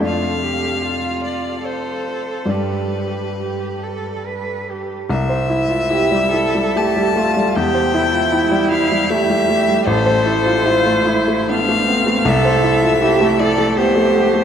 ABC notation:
X:1
M:3/4
L:1/16
Q:1/4=76
K:C
V:1 name="Violin"
f6 d2 c4 | B8 z4 | e8 a4 | g6 f2 e4 |
c8 f4 | e6 d2 c4 |]
V:2 name="Cello"
F2 G2 F4 A4 | G4 G2 A2 B2 G2 | z4 G2 A2 G2 F2 | G2 E6 G4 |
A4 F2 E2 D2 C2 | A4 G2 A2 G4 |]
V:3 name="Grand piano"
[F,,A,Dd]12 | [G,,G,Dd]12 | C,, c E F E G, E G, A, G, A, G, | E,, c E F E G, E G, A, G, A, G, |
A,,, c E F E A, E A, B, A, B, A, | C,, c E F E A, E A, B, A, B, A, |]